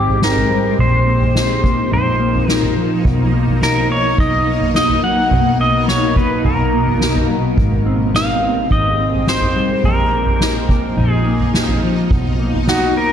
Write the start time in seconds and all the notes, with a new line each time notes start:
Already playing: G#1 G#2 G3 G#3 C4 D#4 G4
0.08 floor tom
0.22 D#4 A#4, snare
0.37 floor tom
0.50 G3
0.79 A#1 A#2 F3 A#3 D#4 C5, floor tom
1.07 A#3
1.21 floor tom
1.35 D#4, snare
1.63 A#3, kick
1.91 A#1 D#4 C5, floor tom
2.20 A#3
2.35 floor tom
2.48 D#4 A#4, snare
2.63 floor tom
2.76 F3
3.05 B1 B2, kick, floor tom
3.33 A#3
3.48 floor tom
3.62 D#4 A#4, snare
3.90 A#3 C#5
4.18 B1 D#4 D#5, kick, floor tom
4.47 A#3
4.61 floor tom
4.75 D#4 D#5, snare
4.89 floor tom
5.03 F#3 F#5
5.31 B1 B2, floor tom
5.60 A#3 D#5
5.88 D#4 C#5, snare
6.16 A#3 B4, kick
6.45 B1 D#4 A#4, floor tom
6.73 A#3
6.87 floor tom
7.01 D#4, snare
7.15 floor tom
7.29 F#3
7.57 G#1 G#2 G#3 C4 G4, kick, floor tom
7.86 C4
8.14 D#4 F5, snare
8.43 C4
8.71 G#1 D#4 D#5, kick, floor tom
8.99 C4
9.13 floor tom
9.27 D#4 C5, snare
9.41 floor tom
9.56 G3
9.84 A#1 A#2 F3 D#4 A#4, floor tom
10.13 A#3
10.26 floor tom
10.41 D#4, snare
10.69 A#3, kick
10.97 A#1 D#4, floor tom
11.11 G#4
11.26 A#3
11.40 floor tom
11.54 D#4, snare
11.69 floor tom
11.83 F3
12.10 B1 B2, kick, floor tom
12.39 A#3
12.54 floor tom
12.67 D#4 F#4, snare
12.96 A#3 A#4